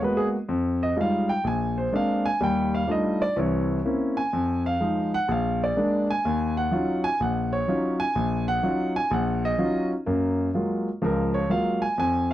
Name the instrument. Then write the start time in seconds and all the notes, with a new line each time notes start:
grand piano
0.02 G#3 A#3 B3 F#4 B4
0.17 G#4
0.49 F2
0.83 D#5
0.97 G3 G#3 D#4 F4
1.01 F5
1.29 G5
1.44 A#1 G#5
1.78 C5
1.92 G#3 A#3 C4 D4 F5
2.26 G#5
2.41 D#2 G3 G5
2.74 F5
2.88 G3 A3 D4 D#4 F4 D#5
3.22 D5
3.36 C2 E3 C#5
3.85 A#3 C4 C#4 E4
4.17 G#5
4.33 F2
4.66 F5
4.80 F3 G#3 D#4
5.14 F#5
5.28 A#1 F5
5.64 D5
5.77 G#3 A#3 D4
6.10 G#5
6.25 D#2
6.57 F#5
6.71 F#3 C#4 D#4 F4
7.04 G#5
7.20 A#1 F#5
7.53 C#5
7.68 F#3 C#4 D#4 F4
8.00 G#5
8.15 A#1
8.48 F#5
8.63 F#3 C#4 D#4 F4
8.96 G#5
9.11 A#1 F#5
9.45 D#5
9.58 F#3 C#4 D#4 F4
10.06 F#2 A#3
10.54 F#3 G#3 A#3 F4
11.02 C#2 F3 A#4
11.34 C#5
11.49 F#3 G#3 A#3 F4 F5
11.82 G#5
11.98 F2 G#5